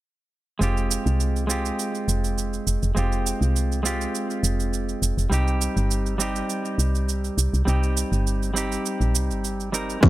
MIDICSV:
0, 0, Header, 1, 5, 480
1, 0, Start_track
1, 0, Key_signature, -4, "minor"
1, 0, Tempo, 588235
1, 501, Time_signature, 4, 2, 24, 8
1, 8237, End_track
2, 0, Start_track
2, 0, Title_t, "Clean electric guitar"
2, 0, Program_c, 0, 27
2, 482, Note_on_c, 0, 56, 77
2, 495, Note_on_c, 0, 60, 70
2, 506, Note_on_c, 0, 65, 70
2, 517, Note_on_c, 0, 67, 85
2, 1185, Note_off_c, 0, 56, 0
2, 1191, Note_off_c, 0, 60, 0
2, 1197, Note_off_c, 0, 65, 0
2, 1200, Note_on_c, 0, 56, 87
2, 1202, Note_off_c, 0, 67, 0
2, 1212, Note_on_c, 0, 60, 80
2, 1221, Note_on_c, 0, 65, 76
2, 1232, Note_on_c, 0, 67, 87
2, 2384, Note_off_c, 0, 56, 0
2, 2390, Note_off_c, 0, 60, 0
2, 2394, Note_off_c, 0, 65, 0
2, 2400, Note_off_c, 0, 67, 0
2, 2405, Note_on_c, 0, 56, 63
2, 2416, Note_on_c, 0, 60, 60
2, 2425, Note_on_c, 0, 65, 57
2, 2437, Note_on_c, 0, 67, 71
2, 3106, Note_off_c, 0, 56, 0
2, 3111, Note_off_c, 0, 60, 0
2, 3116, Note_off_c, 0, 65, 0
2, 3122, Note_off_c, 0, 67, 0
2, 3125, Note_on_c, 0, 56, 78
2, 3134, Note_on_c, 0, 60, 75
2, 3145, Note_on_c, 0, 65, 78
2, 3155, Note_on_c, 0, 67, 92
2, 4306, Note_off_c, 0, 56, 0
2, 4311, Note_off_c, 0, 60, 0
2, 4316, Note_off_c, 0, 65, 0
2, 4321, Note_off_c, 0, 67, 0
2, 4321, Note_on_c, 0, 55, 77
2, 4333, Note_on_c, 0, 60, 71
2, 4344, Note_on_c, 0, 63, 76
2, 4355, Note_on_c, 0, 67, 95
2, 5024, Note_off_c, 0, 55, 0
2, 5030, Note_off_c, 0, 60, 0
2, 5036, Note_off_c, 0, 63, 0
2, 5041, Note_off_c, 0, 67, 0
2, 5044, Note_on_c, 0, 55, 83
2, 5054, Note_on_c, 0, 60, 83
2, 5065, Note_on_c, 0, 63, 81
2, 5074, Note_on_c, 0, 67, 94
2, 6226, Note_off_c, 0, 55, 0
2, 6231, Note_off_c, 0, 60, 0
2, 6236, Note_off_c, 0, 63, 0
2, 6241, Note_off_c, 0, 67, 0
2, 6245, Note_on_c, 0, 55, 69
2, 6257, Note_on_c, 0, 60, 61
2, 6266, Note_on_c, 0, 63, 60
2, 6277, Note_on_c, 0, 67, 68
2, 6946, Note_off_c, 0, 55, 0
2, 6952, Note_off_c, 0, 60, 0
2, 6957, Note_off_c, 0, 63, 0
2, 6962, Note_off_c, 0, 67, 0
2, 6965, Note_on_c, 0, 55, 76
2, 6976, Note_on_c, 0, 60, 78
2, 6987, Note_on_c, 0, 63, 70
2, 6998, Note_on_c, 0, 67, 87
2, 7911, Note_off_c, 0, 55, 0
2, 7916, Note_off_c, 0, 60, 0
2, 7922, Note_off_c, 0, 63, 0
2, 7927, Note_off_c, 0, 67, 0
2, 7934, Note_on_c, 0, 55, 61
2, 7940, Note_on_c, 0, 60, 57
2, 7945, Note_on_c, 0, 63, 60
2, 7951, Note_on_c, 0, 70, 68
2, 8151, Note_off_c, 0, 55, 0
2, 8153, Note_off_c, 0, 60, 0
2, 8156, Note_off_c, 0, 63, 0
2, 8159, Note_off_c, 0, 70, 0
2, 8166, Note_on_c, 0, 56, 83
2, 8201, Note_on_c, 0, 67, 86
2, 8237, Note_off_c, 0, 56, 0
2, 8237, Note_off_c, 0, 67, 0
2, 8237, End_track
3, 0, Start_track
3, 0, Title_t, "Kalimba"
3, 0, Program_c, 1, 108
3, 8181, Note_on_c, 1, 53, 72
3, 8237, Note_off_c, 1, 53, 0
3, 8237, End_track
4, 0, Start_track
4, 0, Title_t, "FM bass"
4, 0, Program_c, 2, 39
4, 497, Note_on_c, 2, 29, 93
4, 799, Note_off_c, 2, 29, 0
4, 865, Note_on_c, 2, 36, 97
4, 1399, Note_off_c, 2, 36, 0
4, 1696, Note_on_c, 2, 29, 83
4, 2119, Note_off_c, 2, 29, 0
4, 2178, Note_on_c, 2, 29, 73
4, 2265, Note_off_c, 2, 29, 0
4, 2307, Note_on_c, 2, 29, 88
4, 2383, Note_off_c, 2, 29, 0
4, 2419, Note_on_c, 2, 29, 90
4, 2720, Note_off_c, 2, 29, 0
4, 2784, Note_on_c, 2, 36, 92
4, 3318, Note_off_c, 2, 36, 0
4, 3616, Note_on_c, 2, 29, 92
4, 4039, Note_off_c, 2, 29, 0
4, 4096, Note_on_c, 2, 29, 77
4, 4184, Note_off_c, 2, 29, 0
4, 4222, Note_on_c, 2, 29, 85
4, 4300, Note_off_c, 2, 29, 0
4, 4336, Note_on_c, 2, 36, 89
4, 4638, Note_off_c, 2, 36, 0
4, 4705, Note_on_c, 2, 31, 94
4, 5239, Note_off_c, 2, 31, 0
4, 5534, Note_on_c, 2, 36, 88
4, 5958, Note_off_c, 2, 36, 0
4, 6018, Note_on_c, 2, 36, 77
4, 6105, Note_off_c, 2, 36, 0
4, 6148, Note_on_c, 2, 36, 82
4, 6223, Note_off_c, 2, 36, 0
4, 6261, Note_on_c, 2, 36, 95
4, 6560, Note_off_c, 2, 36, 0
4, 6625, Note_on_c, 2, 31, 98
4, 7159, Note_off_c, 2, 31, 0
4, 7348, Note_on_c, 2, 34, 87
4, 7460, Note_on_c, 2, 36, 81
4, 7472, Note_off_c, 2, 34, 0
4, 7590, Note_on_c, 2, 31, 75
4, 7602, Note_off_c, 2, 36, 0
4, 8122, Note_off_c, 2, 31, 0
4, 8183, Note_on_c, 2, 29, 95
4, 8237, Note_off_c, 2, 29, 0
4, 8237, End_track
5, 0, Start_track
5, 0, Title_t, "Drums"
5, 503, Note_on_c, 9, 82, 38
5, 585, Note_off_c, 9, 82, 0
5, 630, Note_on_c, 9, 82, 20
5, 712, Note_off_c, 9, 82, 0
5, 742, Note_on_c, 9, 82, 69
5, 824, Note_off_c, 9, 82, 0
5, 870, Note_on_c, 9, 82, 28
5, 951, Note_off_c, 9, 82, 0
5, 981, Note_on_c, 9, 82, 37
5, 1063, Note_off_c, 9, 82, 0
5, 1112, Note_on_c, 9, 82, 20
5, 1193, Note_off_c, 9, 82, 0
5, 1222, Note_on_c, 9, 82, 65
5, 1304, Note_off_c, 9, 82, 0
5, 1350, Note_on_c, 9, 82, 30
5, 1431, Note_off_c, 9, 82, 0
5, 1462, Note_on_c, 9, 82, 38
5, 1544, Note_off_c, 9, 82, 0
5, 1589, Note_on_c, 9, 82, 19
5, 1671, Note_off_c, 9, 82, 0
5, 1703, Note_on_c, 9, 82, 61
5, 1784, Note_off_c, 9, 82, 0
5, 1830, Note_on_c, 9, 82, 27
5, 1912, Note_off_c, 9, 82, 0
5, 1942, Note_on_c, 9, 82, 38
5, 2024, Note_off_c, 9, 82, 0
5, 2068, Note_on_c, 9, 82, 20
5, 2150, Note_off_c, 9, 82, 0
5, 2180, Note_on_c, 9, 82, 73
5, 2262, Note_off_c, 9, 82, 0
5, 2308, Note_on_c, 9, 82, 30
5, 2389, Note_off_c, 9, 82, 0
5, 2422, Note_on_c, 9, 82, 40
5, 2504, Note_off_c, 9, 82, 0
5, 2549, Note_on_c, 9, 82, 21
5, 2631, Note_off_c, 9, 82, 0
5, 2664, Note_on_c, 9, 82, 66
5, 2745, Note_off_c, 9, 82, 0
5, 2793, Note_on_c, 9, 82, 29
5, 2874, Note_off_c, 9, 82, 0
5, 2906, Note_on_c, 9, 82, 41
5, 2988, Note_off_c, 9, 82, 0
5, 3035, Note_on_c, 9, 82, 21
5, 3116, Note_off_c, 9, 82, 0
5, 3145, Note_on_c, 9, 82, 69
5, 3227, Note_off_c, 9, 82, 0
5, 3273, Note_on_c, 9, 82, 30
5, 3354, Note_off_c, 9, 82, 0
5, 3386, Note_on_c, 9, 82, 42
5, 3468, Note_off_c, 9, 82, 0
5, 3512, Note_on_c, 9, 82, 19
5, 3593, Note_off_c, 9, 82, 0
5, 3623, Note_on_c, 9, 82, 63
5, 3704, Note_off_c, 9, 82, 0
5, 3752, Note_on_c, 9, 82, 27
5, 3834, Note_off_c, 9, 82, 0
5, 3863, Note_on_c, 9, 82, 37
5, 3945, Note_off_c, 9, 82, 0
5, 3990, Note_on_c, 9, 82, 21
5, 4071, Note_off_c, 9, 82, 0
5, 4102, Note_on_c, 9, 82, 78
5, 4184, Note_off_c, 9, 82, 0
5, 4230, Note_on_c, 9, 82, 29
5, 4312, Note_off_c, 9, 82, 0
5, 4343, Note_on_c, 9, 82, 43
5, 4425, Note_off_c, 9, 82, 0
5, 4469, Note_on_c, 9, 82, 22
5, 4551, Note_off_c, 9, 82, 0
5, 4580, Note_on_c, 9, 82, 69
5, 4662, Note_off_c, 9, 82, 0
5, 4709, Note_on_c, 9, 82, 29
5, 4790, Note_off_c, 9, 82, 0
5, 4821, Note_on_c, 9, 82, 44
5, 4902, Note_off_c, 9, 82, 0
5, 4947, Note_on_c, 9, 82, 21
5, 5029, Note_off_c, 9, 82, 0
5, 5059, Note_on_c, 9, 82, 71
5, 5141, Note_off_c, 9, 82, 0
5, 5187, Note_on_c, 9, 82, 32
5, 5269, Note_off_c, 9, 82, 0
5, 5301, Note_on_c, 9, 82, 45
5, 5382, Note_off_c, 9, 82, 0
5, 5429, Note_on_c, 9, 82, 20
5, 5510, Note_off_c, 9, 82, 0
5, 5543, Note_on_c, 9, 82, 68
5, 5625, Note_off_c, 9, 82, 0
5, 5672, Note_on_c, 9, 82, 27
5, 5754, Note_off_c, 9, 82, 0
5, 5783, Note_on_c, 9, 82, 40
5, 5865, Note_off_c, 9, 82, 0
5, 5911, Note_on_c, 9, 82, 20
5, 5993, Note_off_c, 9, 82, 0
5, 6024, Note_on_c, 9, 82, 74
5, 6106, Note_off_c, 9, 82, 0
5, 6154, Note_on_c, 9, 82, 30
5, 6235, Note_off_c, 9, 82, 0
5, 6265, Note_on_c, 9, 82, 41
5, 6346, Note_off_c, 9, 82, 0
5, 6392, Note_on_c, 9, 82, 22
5, 6473, Note_off_c, 9, 82, 0
5, 6504, Note_on_c, 9, 82, 73
5, 6585, Note_off_c, 9, 82, 0
5, 6633, Note_on_c, 9, 82, 28
5, 6714, Note_off_c, 9, 82, 0
5, 6747, Note_on_c, 9, 82, 39
5, 6829, Note_off_c, 9, 82, 0
5, 6876, Note_on_c, 9, 82, 20
5, 6958, Note_off_c, 9, 82, 0
5, 6989, Note_on_c, 9, 82, 67
5, 7070, Note_off_c, 9, 82, 0
5, 7115, Note_on_c, 9, 82, 30
5, 7197, Note_off_c, 9, 82, 0
5, 7227, Note_on_c, 9, 82, 42
5, 7308, Note_off_c, 9, 82, 0
5, 7354, Note_on_c, 9, 82, 20
5, 7436, Note_off_c, 9, 82, 0
5, 7466, Note_on_c, 9, 82, 71
5, 7548, Note_off_c, 9, 82, 0
5, 7595, Note_on_c, 9, 82, 27
5, 7677, Note_off_c, 9, 82, 0
5, 7707, Note_on_c, 9, 82, 39
5, 7788, Note_off_c, 9, 82, 0
5, 7835, Note_on_c, 9, 82, 20
5, 7917, Note_off_c, 9, 82, 0
5, 7948, Note_on_c, 9, 82, 79
5, 8030, Note_off_c, 9, 82, 0
5, 8075, Note_on_c, 9, 82, 28
5, 8157, Note_off_c, 9, 82, 0
5, 8183, Note_on_c, 9, 36, 104
5, 8189, Note_on_c, 9, 82, 41
5, 8237, Note_off_c, 9, 36, 0
5, 8237, Note_off_c, 9, 82, 0
5, 8237, End_track
0, 0, End_of_file